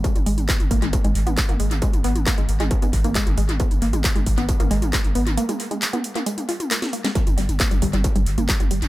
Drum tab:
HH |xxoxxxoxxxoxxxox|xxoxxxoxxxoxxxox|xxoxxxoxxxoxxxox|xxoxxxoxxxoxxxox|
CP |----x-------x---|----x-------x---|----x-------x---|----x-------x---|
SD |----------------|----------------|----------------|-------------o-o|
T2 |-o-o-o-o-o-o-o-o|-o-o-o-o-o-o-o-o|-o-o-o-o-o-o-o-o|-o-o-o-o-o-o-o-o|
BD |o---o-o-o---o---|o---o---o-o-o---|o---o-o-o---o---|----------------|

HH |xxoxxxoxxxoxxxox|
CP |----x-------x---|
SD |----------------|
T2 |-o-o-o-o-o-o-o-o|
BD |o---o-o-o---o---|